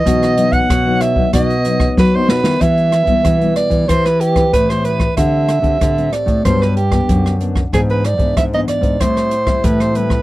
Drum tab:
HH |xxxxx-x-xxx-----|xxxxxxxxxxxxxxx-|x-xxxxxxx-xxxxx-|xxxxxxxxxxxxxxx-|
SD |-r--r-r-r--ro-oo|r-r-r-r-rr-r-r-r|r-r-r-r-rr-r-r-r|r-r-r-r-rr-r-r-r|
BD |o--oo--oo--oo---|o--oo--oo--oo--o|o--oo--oo--oo--o|o--oo--oo--oo--o|